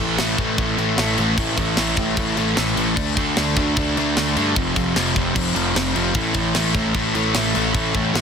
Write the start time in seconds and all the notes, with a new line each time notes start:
Already playing: A2 E3
0.00 A1 A3
0.18 A1 A2 E3 A3, snare, crash
0.38 A1 A2 E3 A3, kick, crash
0.57 A1 A2 E3 A3, kick, crash
0.78 A1 A2 E3 A3, crash
0.97 A1 A2 E3 A3, snare, crash
1.18 A1 A2 E3 A3, crash
1.38 A1 A2 E3 A3, kick, crash
1.57 A1 A2 E3 A3, kick, crash
1.77 A1 A2 E3 A3, snare, crash
1.97 A1 A2 E3 A3, kick, crash
2.17 A1 A2 E3 A3, kick, crash
2.36 A1 A2 E3 A3, crash
2.56 A1 A2 E3 A3, snare, crash
2.75 A1 A2 E3 A3, crash
2.95 D2 D3 A3 D4, kick, crash
3.15 D2 D3 A3 D4, kick, crash
3.37 D2 D3 A3 D4, snare, crash
3.56 D2 D3 A3 D4, kick, crash
3.76 D2 D3 A3 D4, kick, crash
3.96 D2 D3 A3 D4, crash
4.17 D2 D3 A3 D4, snare, crash
4.36 G2 D3 A3 D4, crash
4.56 F1 F2 C3 F3, kick, crash
4.74 F1 F2 C3 F3, kick, crash
4.95 F1 F2 C3 F3, snare, crash
5.14 F1 F2 C3 F3, kick, crash
5.34 F1 F2 C3 F3, kick, crash
5.54 F1 F2 C3 F3, crash
5.75 F1 F2 C3 F3, snare, crash
5.94 F1 F2 C3 F3, crash
6.14 A1 A2 E3 A3, kick, crash
6.34 A1 A2 E3 A3, kick, crash
6.55 A1 A2 E3 A3, snare, crash
6.74 A1 A2 E3 A3, kick, crash
6.94 A1 A2 E3 A3, kick, crash
7.14 A1 A2 E3 A3, crash
7.34 A1 A2 E3 A3, snare, crash
7.53 A1 A2 E3 A3, crash
7.74 A1 A2 E3 A3, kick, crash
7.95 A1 A2 E3 A3, kick, crash
8.14 A1 A2 E3 A3, snare, crash